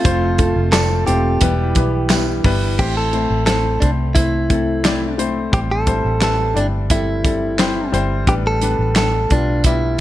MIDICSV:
0, 0, Header, 1, 6, 480
1, 0, Start_track
1, 0, Key_signature, 0, "minor"
1, 0, Tempo, 685714
1, 36, Time_signature, 4, 2, 24, 8
1, 7003, End_track
2, 0, Start_track
2, 0, Title_t, "Clean electric guitar"
2, 0, Program_c, 0, 27
2, 0, Note_on_c, 0, 65, 78
2, 482, Note_off_c, 0, 65, 0
2, 507, Note_on_c, 0, 69, 95
2, 743, Note_off_c, 0, 69, 0
2, 746, Note_on_c, 0, 67, 66
2, 1682, Note_off_c, 0, 67, 0
2, 1955, Note_on_c, 0, 67, 84
2, 2077, Note_off_c, 0, 67, 0
2, 2080, Note_on_c, 0, 69, 85
2, 2414, Note_off_c, 0, 69, 0
2, 2423, Note_on_c, 0, 69, 82
2, 2663, Note_on_c, 0, 62, 73
2, 2676, Note_off_c, 0, 69, 0
2, 2729, Note_off_c, 0, 62, 0
2, 2903, Note_on_c, 0, 64, 71
2, 3601, Note_off_c, 0, 64, 0
2, 3877, Note_on_c, 0, 67, 85
2, 3912, Note_off_c, 0, 67, 0
2, 4000, Note_on_c, 0, 69, 92
2, 4354, Note_off_c, 0, 69, 0
2, 4362, Note_on_c, 0, 69, 89
2, 4597, Note_on_c, 0, 62, 76
2, 4606, Note_off_c, 0, 69, 0
2, 4662, Note_off_c, 0, 62, 0
2, 4839, Note_on_c, 0, 64, 81
2, 5530, Note_off_c, 0, 64, 0
2, 5801, Note_on_c, 0, 67, 87
2, 5836, Note_off_c, 0, 67, 0
2, 5929, Note_on_c, 0, 69, 88
2, 6273, Note_off_c, 0, 69, 0
2, 6282, Note_on_c, 0, 69, 87
2, 6524, Note_on_c, 0, 62, 74
2, 6526, Note_off_c, 0, 69, 0
2, 6761, Note_off_c, 0, 62, 0
2, 6764, Note_on_c, 0, 64, 72
2, 7003, Note_off_c, 0, 64, 0
2, 7003, End_track
3, 0, Start_track
3, 0, Title_t, "Steel-string acoustic guitar"
3, 0, Program_c, 1, 25
3, 27, Note_on_c, 1, 53, 77
3, 29, Note_on_c, 1, 57, 87
3, 35, Note_on_c, 1, 60, 82
3, 37, Note_on_c, 1, 65, 80
3, 38, Note_on_c, 1, 69, 82
3, 259, Note_off_c, 1, 69, 0
3, 268, Note_on_c, 1, 69, 57
3, 269, Note_off_c, 1, 65, 0
3, 271, Note_off_c, 1, 53, 0
3, 272, Note_off_c, 1, 57, 0
3, 275, Note_off_c, 1, 60, 0
3, 277, Note_on_c, 1, 65, 54
3, 286, Note_on_c, 1, 60, 48
3, 505, Note_off_c, 1, 60, 0
3, 506, Note_on_c, 1, 57, 57
3, 510, Note_off_c, 1, 65, 0
3, 511, Note_off_c, 1, 69, 0
3, 513, Note_on_c, 1, 60, 58
3, 519, Note_on_c, 1, 65, 67
3, 525, Note_on_c, 1, 69, 74
3, 734, Note_off_c, 1, 69, 0
3, 742, Note_on_c, 1, 69, 66
3, 744, Note_off_c, 1, 65, 0
3, 750, Note_off_c, 1, 57, 0
3, 752, Note_on_c, 1, 65, 56
3, 754, Note_off_c, 1, 60, 0
3, 761, Note_on_c, 1, 60, 46
3, 982, Note_on_c, 1, 52, 73
3, 987, Note_off_c, 1, 60, 0
3, 988, Note_on_c, 1, 55, 71
3, 989, Note_off_c, 1, 65, 0
3, 989, Note_off_c, 1, 69, 0
3, 990, Note_on_c, 1, 64, 83
3, 992, Note_on_c, 1, 67, 83
3, 996, Note_on_c, 1, 71, 75
3, 1455, Note_off_c, 1, 55, 0
3, 1463, Note_on_c, 1, 55, 56
3, 1468, Note_off_c, 1, 67, 0
3, 1469, Note_off_c, 1, 64, 0
3, 1472, Note_on_c, 1, 64, 55
3, 1475, Note_off_c, 1, 71, 0
3, 1476, Note_on_c, 1, 67, 57
3, 1483, Note_on_c, 1, 71, 55
3, 1696, Note_off_c, 1, 71, 0
3, 1705, Note_on_c, 1, 71, 50
3, 1709, Note_off_c, 1, 55, 0
3, 1709, Note_off_c, 1, 67, 0
3, 1713, Note_off_c, 1, 64, 0
3, 1717, Note_on_c, 1, 67, 53
3, 1724, Note_on_c, 1, 64, 47
3, 1949, Note_off_c, 1, 71, 0
3, 1956, Note_off_c, 1, 67, 0
3, 1959, Note_off_c, 1, 64, 0
3, 2309, Note_off_c, 1, 52, 0
3, 7003, End_track
4, 0, Start_track
4, 0, Title_t, "Upright piano"
4, 0, Program_c, 2, 0
4, 0, Control_c, 2, 64, 127
4, 31, Note_on_c, 2, 57, 83
4, 33, Note_on_c, 2, 60, 76
4, 35, Note_on_c, 2, 65, 76
4, 36, Note_on_c, 2, 48, 55
4, 37, Note_on_c, 2, 72, 98
4, 45, Control_c, 2, 64, 0
4, 181, Control_c, 2, 64, 127
4, 243, Note_off_c, 2, 57, 0
4, 244, Note_off_c, 2, 60, 0
4, 246, Note_off_c, 2, 65, 0
4, 247, Note_off_c, 2, 72, 0
4, 273, Note_on_c, 2, 57, 64
4, 274, Note_on_c, 2, 60, 55
4, 276, Note_on_c, 2, 65, 61
4, 281, Note_on_c, 2, 69, 70
4, 484, Note_off_c, 2, 57, 0
4, 485, Note_off_c, 2, 60, 0
4, 486, Note_off_c, 2, 65, 0
4, 488, Note_off_c, 2, 69, 0
4, 509, Note_on_c, 2, 57, 68
4, 513, Note_on_c, 2, 60, 66
4, 515, Note_on_c, 2, 65, 68
4, 515, Note_on_c, 2, 74, 83
4, 722, Note_off_c, 2, 57, 0
4, 724, Note_off_c, 2, 60, 0
4, 725, Note_off_c, 2, 65, 0
4, 725, Note_off_c, 2, 74, 0
4, 727, Note_off_c, 2, 48, 0
4, 746, Note_on_c, 2, 60, 62
4, 747, Note_on_c, 2, 57, 68
4, 750, Note_on_c, 2, 65, 55
4, 753, Note_on_c, 2, 72, 72
4, 960, Note_off_c, 2, 60, 0
4, 961, Note_off_c, 2, 57, 0
4, 963, Note_off_c, 2, 65, 0
4, 964, Note_off_c, 2, 72, 0
4, 992, Note_on_c, 2, 55, 89
4, 994, Note_on_c, 2, 47, 58
4, 996, Note_on_c, 2, 59, 79
4, 996, Note_on_c, 2, 64, 73
4, 998, Note_on_c, 2, 71, 97
4, 1003, Control_c, 2, 64, 0
4, 1121, Control_c, 2, 64, 127
4, 1203, Note_off_c, 2, 55, 0
4, 1205, Note_off_c, 2, 59, 0
4, 1205, Note_off_c, 2, 64, 0
4, 1207, Note_off_c, 2, 71, 0
4, 1233, Note_on_c, 2, 55, 65
4, 1233, Note_on_c, 2, 59, 67
4, 1239, Note_on_c, 2, 64, 61
4, 1242, Note_on_c, 2, 71, 78
4, 1444, Note_off_c, 2, 55, 0
4, 1444, Note_off_c, 2, 59, 0
4, 1447, Note_off_c, 2, 64, 0
4, 1448, Note_off_c, 2, 71, 0
4, 1468, Note_on_c, 2, 55, 75
4, 1470, Note_on_c, 2, 59, 76
4, 1472, Note_on_c, 2, 64, 72
4, 1474, Note_on_c, 2, 71, 76
4, 1681, Note_off_c, 2, 55, 0
4, 1682, Note_off_c, 2, 59, 0
4, 1683, Note_off_c, 2, 64, 0
4, 1684, Note_off_c, 2, 71, 0
4, 1686, Note_off_c, 2, 47, 0
4, 1710, Note_on_c, 2, 55, 92
4, 1713, Note_on_c, 2, 59, 88
4, 1715, Note_on_c, 2, 64, 80
4, 1717, Note_on_c, 2, 71, 104
4, 1922, Note_off_c, 2, 55, 0
4, 1923, Note_off_c, 2, 59, 0
4, 1925, Note_off_c, 2, 64, 0
4, 1926, Note_off_c, 2, 71, 0
4, 1956, Note_on_c, 2, 57, 68
4, 1957, Note_on_c, 2, 45, 44
4, 1957, Note_on_c, 2, 60, 67
4, 1958, Note_on_c, 2, 52, 51
4, 1960, Note_on_c, 2, 64, 74
4, 1963, Control_c, 2, 64, 0
4, 1963, Note_on_c, 2, 72, 85
4, 2080, Control_c, 2, 64, 127
4, 2165, Note_off_c, 2, 57, 0
4, 2166, Note_off_c, 2, 60, 0
4, 2167, Note_off_c, 2, 64, 0
4, 2168, Note_off_c, 2, 72, 0
4, 2191, Note_on_c, 2, 57, 68
4, 2195, Note_on_c, 2, 60, 72
4, 2195, Note_on_c, 2, 64, 74
4, 2198, Note_on_c, 2, 72, 73
4, 2403, Note_off_c, 2, 57, 0
4, 2405, Note_off_c, 2, 60, 0
4, 2405, Note_off_c, 2, 64, 0
4, 2406, Note_off_c, 2, 72, 0
4, 2435, Note_on_c, 2, 57, 63
4, 2437, Note_on_c, 2, 60, 61
4, 2440, Note_on_c, 2, 64, 61
4, 2441, Note_on_c, 2, 72, 70
4, 2644, Note_off_c, 2, 57, 0
4, 2646, Note_off_c, 2, 60, 0
4, 2647, Note_off_c, 2, 45, 0
4, 2647, Note_off_c, 2, 64, 0
4, 2648, Note_off_c, 2, 52, 0
4, 2648, Note_off_c, 2, 72, 0
4, 2671, Note_on_c, 2, 57, 58
4, 2676, Note_on_c, 2, 60, 54
4, 2677, Note_on_c, 2, 64, 51
4, 2682, Note_on_c, 2, 72, 66
4, 2883, Note_off_c, 2, 57, 0
4, 2885, Note_off_c, 2, 60, 0
4, 2885, Note_off_c, 2, 64, 0
4, 2888, Note_off_c, 2, 72, 0
4, 2912, Note_on_c, 2, 57, 62
4, 2915, Note_on_c, 2, 60, 54
4, 2916, Note_on_c, 2, 72, 62
4, 2919, Note_on_c, 2, 64, 57
4, 3123, Note_off_c, 2, 57, 0
4, 3125, Note_off_c, 2, 60, 0
4, 3125, Note_off_c, 2, 72, 0
4, 3126, Note_off_c, 2, 64, 0
4, 3151, Note_on_c, 2, 57, 62
4, 3155, Note_on_c, 2, 60, 58
4, 3158, Note_on_c, 2, 64, 50
4, 3163, Note_on_c, 2, 69, 67
4, 3363, Note_off_c, 2, 57, 0
4, 3365, Note_off_c, 2, 60, 0
4, 3366, Note_off_c, 2, 64, 0
4, 3369, Note_off_c, 2, 69, 0
4, 3388, Note_on_c, 2, 57, 76
4, 3389, Note_on_c, 2, 60, 67
4, 3394, Note_on_c, 2, 64, 72
4, 3397, Note_on_c, 2, 74, 84
4, 3601, Note_off_c, 2, 57, 0
4, 3602, Note_off_c, 2, 60, 0
4, 3604, Note_off_c, 2, 64, 0
4, 3606, Note_off_c, 2, 74, 0
4, 3626, Note_on_c, 2, 57, 81
4, 3629, Note_on_c, 2, 60, 71
4, 3629, Note_on_c, 2, 64, 80
4, 3633, Note_on_c, 2, 72, 85
4, 3841, Note_off_c, 2, 57, 0
4, 3842, Note_off_c, 2, 60, 0
4, 3842, Note_off_c, 2, 64, 0
4, 3844, Note_off_c, 2, 72, 0
4, 3863, Note_on_c, 2, 55, 71
4, 3869, Note_on_c, 2, 60, 62
4, 3870, Note_on_c, 2, 45, 52
4, 3870, Note_on_c, 2, 64, 73
4, 3873, Note_on_c, 2, 72, 88
4, 3884, Control_c, 2, 64, 0
4, 4006, Control_c, 2, 64, 127
4, 4079, Note_off_c, 2, 55, 0
4, 4082, Note_off_c, 2, 60, 0
4, 4082, Note_off_c, 2, 64, 0
4, 4084, Note_off_c, 2, 72, 0
4, 4105, Note_on_c, 2, 55, 74
4, 4105, Note_on_c, 2, 60, 73
4, 4109, Note_on_c, 2, 64, 72
4, 4113, Note_on_c, 2, 72, 88
4, 4320, Note_off_c, 2, 55, 0
4, 4320, Note_off_c, 2, 60, 0
4, 4322, Note_off_c, 2, 64, 0
4, 4324, Note_off_c, 2, 72, 0
4, 4344, Note_on_c, 2, 55, 63
4, 4345, Note_on_c, 2, 60, 61
4, 4349, Note_on_c, 2, 64, 62
4, 4352, Note_on_c, 2, 71, 69
4, 4560, Note_off_c, 2, 55, 0
4, 4560, Note_off_c, 2, 60, 0
4, 4562, Note_off_c, 2, 64, 0
4, 4564, Note_off_c, 2, 71, 0
4, 4565, Note_off_c, 2, 45, 0
4, 4579, Note_on_c, 2, 55, 61
4, 4584, Note_on_c, 2, 60, 55
4, 4588, Note_on_c, 2, 64, 60
4, 4590, Note_on_c, 2, 74, 67
4, 4797, Note_off_c, 2, 55, 0
4, 4800, Note_off_c, 2, 60, 0
4, 4802, Note_off_c, 2, 64, 0
4, 4802, Note_off_c, 2, 74, 0
4, 4829, Note_on_c, 2, 55, 59
4, 4829, Note_on_c, 2, 60, 58
4, 4832, Note_on_c, 2, 64, 59
4, 4835, Note_on_c, 2, 69, 70
4, 5042, Note_off_c, 2, 55, 0
4, 5042, Note_off_c, 2, 60, 0
4, 5044, Note_off_c, 2, 64, 0
4, 5045, Note_off_c, 2, 69, 0
4, 5068, Note_on_c, 2, 55, 58
4, 5073, Note_on_c, 2, 60, 57
4, 5075, Note_on_c, 2, 64, 57
4, 5078, Note_on_c, 2, 69, 70
4, 5282, Note_off_c, 2, 55, 0
4, 5285, Note_off_c, 2, 60, 0
4, 5286, Note_off_c, 2, 64, 0
4, 5287, Note_off_c, 2, 69, 0
4, 5306, Note_on_c, 2, 55, 76
4, 5308, Note_on_c, 2, 60, 71
4, 5312, Note_on_c, 2, 64, 68
4, 5313, Note_on_c, 2, 72, 84
4, 5521, Note_off_c, 2, 55, 0
4, 5522, Note_off_c, 2, 60, 0
4, 5524, Note_off_c, 2, 64, 0
4, 5524, Note_off_c, 2, 72, 0
4, 5544, Note_on_c, 2, 55, 86
4, 5550, Note_on_c, 2, 60, 83
4, 5554, Note_on_c, 2, 64, 78
4, 5555, Note_on_c, 2, 72, 94
4, 5760, Note_off_c, 2, 55, 0
4, 5763, Note_off_c, 2, 60, 0
4, 5765, Note_off_c, 2, 64, 0
4, 5766, Note_off_c, 2, 72, 0
4, 5791, Note_on_c, 2, 55, 82
4, 5794, Note_on_c, 2, 59, 70
4, 5795, Note_on_c, 2, 45, 52
4, 5797, Note_on_c, 2, 62, 67
4, 5803, Note_on_c, 2, 71, 85
4, 5805, Control_c, 2, 64, 0
4, 5932, Control_c, 2, 64, 127
4, 6004, Note_off_c, 2, 55, 0
4, 6005, Note_off_c, 2, 59, 0
4, 6007, Note_off_c, 2, 62, 0
4, 6010, Note_off_c, 2, 71, 0
4, 6031, Note_on_c, 2, 55, 76
4, 6036, Note_on_c, 2, 59, 75
4, 6037, Note_on_c, 2, 62, 76
4, 6040, Note_on_c, 2, 71, 85
4, 6244, Note_off_c, 2, 55, 0
4, 6246, Note_off_c, 2, 59, 0
4, 6247, Note_off_c, 2, 62, 0
4, 6248, Note_off_c, 2, 71, 0
4, 6269, Note_on_c, 2, 55, 68
4, 6274, Note_on_c, 2, 59, 60
4, 6274, Note_on_c, 2, 62, 60
4, 6277, Note_on_c, 2, 71, 66
4, 6483, Note_off_c, 2, 55, 0
4, 6485, Note_off_c, 2, 59, 0
4, 6485, Note_off_c, 2, 62, 0
4, 6487, Note_off_c, 2, 71, 0
4, 6488, Note_off_c, 2, 45, 0
4, 6522, Note_on_c, 2, 55, 67
4, 6525, Note_on_c, 2, 59, 58
4, 6525, Note_on_c, 2, 62, 56
4, 6525, Note_on_c, 2, 65, 75
4, 6729, Note_off_c, 2, 55, 0
4, 6731, Note_off_c, 2, 59, 0
4, 6731, Note_off_c, 2, 62, 0
4, 6731, Note_off_c, 2, 65, 0
4, 6763, Note_on_c, 2, 55, 68
4, 6763, Note_on_c, 2, 59, 61
4, 6766, Note_on_c, 2, 62, 62
4, 6769, Note_on_c, 2, 74, 66
4, 6970, Note_off_c, 2, 55, 0
4, 6970, Note_off_c, 2, 59, 0
4, 6971, Note_off_c, 2, 62, 0
4, 6973, Note_off_c, 2, 74, 0
4, 7003, End_track
5, 0, Start_track
5, 0, Title_t, "Fingered electric bass"
5, 0, Program_c, 3, 33
5, 34, Note_on_c, 3, 29, 99
5, 369, Note_off_c, 3, 29, 0
5, 392, Note_on_c, 3, 29, 91
5, 728, Note_off_c, 3, 29, 0
5, 755, Note_on_c, 3, 28, 81
5, 978, Note_off_c, 3, 28, 0
5, 990, Note_on_c, 3, 28, 97
5, 1230, Note_off_c, 3, 28, 0
5, 1230, Note_on_c, 3, 35, 88
5, 1684, Note_off_c, 3, 35, 0
5, 1710, Note_on_c, 3, 31, 72
5, 1935, Note_off_c, 3, 31, 0
5, 1952, Note_on_c, 3, 33, 76
5, 2288, Note_off_c, 3, 33, 0
5, 2312, Note_on_c, 3, 33, 88
5, 2648, Note_off_c, 3, 33, 0
5, 2675, Note_on_c, 3, 36, 70
5, 3847, Note_off_c, 3, 36, 0
5, 3871, Note_on_c, 3, 33, 90
5, 4208, Note_off_c, 3, 33, 0
5, 4232, Note_on_c, 3, 33, 78
5, 4568, Note_off_c, 3, 33, 0
5, 4590, Note_on_c, 3, 31, 74
5, 5525, Note_off_c, 3, 31, 0
5, 5552, Note_on_c, 3, 31, 69
5, 5777, Note_off_c, 3, 31, 0
5, 5790, Note_on_c, 3, 33, 101
5, 6128, Note_off_c, 3, 33, 0
5, 6151, Note_on_c, 3, 33, 89
5, 6488, Note_off_c, 3, 33, 0
5, 6513, Note_on_c, 3, 35, 75
5, 7003, Note_off_c, 3, 35, 0
5, 7003, End_track
6, 0, Start_track
6, 0, Title_t, "Drums"
6, 35, Note_on_c, 9, 36, 115
6, 36, Note_on_c, 9, 42, 94
6, 105, Note_off_c, 9, 36, 0
6, 106, Note_off_c, 9, 42, 0
6, 269, Note_on_c, 9, 42, 70
6, 272, Note_on_c, 9, 36, 85
6, 339, Note_off_c, 9, 42, 0
6, 342, Note_off_c, 9, 36, 0
6, 510, Note_on_c, 9, 39, 86
6, 511, Note_on_c, 9, 38, 116
6, 511, Note_on_c, 9, 42, 96
6, 519, Note_on_c, 9, 54, 78
6, 580, Note_off_c, 9, 39, 0
6, 581, Note_off_c, 9, 38, 0
6, 581, Note_off_c, 9, 42, 0
6, 589, Note_off_c, 9, 54, 0
6, 751, Note_on_c, 9, 42, 67
6, 821, Note_off_c, 9, 42, 0
6, 985, Note_on_c, 9, 42, 92
6, 990, Note_on_c, 9, 36, 91
6, 1055, Note_off_c, 9, 42, 0
6, 1060, Note_off_c, 9, 36, 0
6, 1225, Note_on_c, 9, 42, 62
6, 1231, Note_on_c, 9, 36, 88
6, 1295, Note_off_c, 9, 42, 0
6, 1301, Note_off_c, 9, 36, 0
6, 1467, Note_on_c, 9, 42, 85
6, 1469, Note_on_c, 9, 39, 95
6, 1470, Note_on_c, 9, 38, 112
6, 1479, Note_on_c, 9, 54, 77
6, 1537, Note_off_c, 9, 42, 0
6, 1539, Note_off_c, 9, 39, 0
6, 1540, Note_off_c, 9, 38, 0
6, 1549, Note_off_c, 9, 54, 0
6, 1711, Note_on_c, 9, 36, 89
6, 1711, Note_on_c, 9, 46, 74
6, 1781, Note_off_c, 9, 36, 0
6, 1781, Note_off_c, 9, 46, 0
6, 1953, Note_on_c, 9, 36, 90
6, 1953, Note_on_c, 9, 49, 76
6, 2023, Note_off_c, 9, 36, 0
6, 2023, Note_off_c, 9, 49, 0
6, 2191, Note_on_c, 9, 42, 66
6, 2261, Note_off_c, 9, 42, 0
6, 2430, Note_on_c, 9, 39, 88
6, 2431, Note_on_c, 9, 38, 109
6, 2431, Note_on_c, 9, 42, 90
6, 2500, Note_off_c, 9, 39, 0
6, 2501, Note_off_c, 9, 38, 0
6, 2501, Note_off_c, 9, 42, 0
6, 2672, Note_on_c, 9, 42, 56
6, 2674, Note_on_c, 9, 36, 71
6, 2742, Note_off_c, 9, 42, 0
6, 2744, Note_off_c, 9, 36, 0
6, 2907, Note_on_c, 9, 42, 92
6, 2910, Note_on_c, 9, 36, 86
6, 2977, Note_off_c, 9, 42, 0
6, 2980, Note_off_c, 9, 36, 0
6, 3150, Note_on_c, 9, 42, 59
6, 3151, Note_on_c, 9, 36, 84
6, 3220, Note_off_c, 9, 42, 0
6, 3221, Note_off_c, 9, 36, 0
6, 3392, Note_on_c, 9, 42, 80
6, 3394, Note_on_c, 9, 39, 73
6, 3395, Note_on_c, 9, 38, 110
6, 3462, Note_off_c, 9, 42, 0
6, 3464, Note_off_c, 9, 39, 0
6, 3465, Note_off_c, 9, 38, 0
6, 3634, Note_on_c, 9, 42, 66
6, 3704, Note_off_c, 9, 42, 0
6, 3871, Note_on_c, 9, 36, 106
6, 3873, Note_on_c, 9, 42, 71
6, 3941, Note_off_c, 9, 36, 0
6, 3943, Note_off_c, 9, 42, 0
6, 4107, Note_on_c, 9, 42, 62
6, 4109, Note_on_c, 9, 36, 84
6, 4177, Note_off_c, 9, 42, 0
6, 4179, Note_off_c, 9, 36, 0
6, 4350, Note_on_c, 9, 39, 81
6, 4351, Note_on_c, 9, 38, 109
6, 4351, Note_on_c, 9, 42, 93
6, 4420, Note_off_c, 9, 39, 0
6, 4421, Note_off_c, 9, 38, 0
6, 4421, Note_off_c, 9, 42, 0
6, 4596, Note_on_c, 9, 42, 60
6, 4666, Note_off_c, 9, 42, 0
6, 4830, Note_on_c, 9, 42, 96
6, 4831, Note_on_c, 9, 36, 91
6, 4900, Note_off_c, 9, 42, 0
6, 4901, Note_off_c, 9, 36, 0
6, 5072, Note_on_c, 9, 36, 77
6, 5072, Note_on_c, 9, 42, 61
6, 5142, Note_off_c, 9, 36, 0
6, 5142, Note_off_c, 9, 42, 0
6, 5312, Note_on_c, 9, 42, 78
6, 5314, Note_on_c, 9, 39, 74
6, 5315, Note_on_c, 9, 38, 93
6, 5382, Note_off_c, 9, 42, 0
6, 5384, Note_off_c, 9, 39, 0
6, 5385, Note_off_c, 9, 38, 0
6, 5556, Note_on_c, 9, 42, 64
6, 5626, Note_off_c, 9, 42, 0
6, 5790, Note_on_c, 9, 42, 73
6, 5791, Note_on_c, 9, 36, 94
6, 5860, Note_off_c, 9, 42, 0
6, 5861, Note_off_c, 9, 36, 0
6, 6031, Note_on_c, 9, 42, 65
6, 6101, Note_off_c, 9, 42, 0
6, 6270, Note_on_c, 9, 39, 80
6, 6271, Note_on_c, 9, 42, 88
6, 6272, Note_on_c, 9, 38, 105
6, 6340, Note_off_c, 9, 39, 0
6, 6341, Note_off_c, 9, 42, 0
6, 6342, Note_off_c, 9, 38, 0
6, 6513, Note_on_c, 9, 42, 53
6, 6515, Note_on_c, 9, 36, 83
6, 6583, Note_off_c, 9, 42, 0
6, 6585, Note_off_c, 9, 36, 0
6, 6747, Note_on_c, 9, 42, 90
6, 6751, Note_on_c, 9, 36, 86
6, 6817, Note_off_c, 9, 42, 0
6, 6821, Note_off_c, 9, 36, 0
6, 7003, End_track
0, 0, End_of_file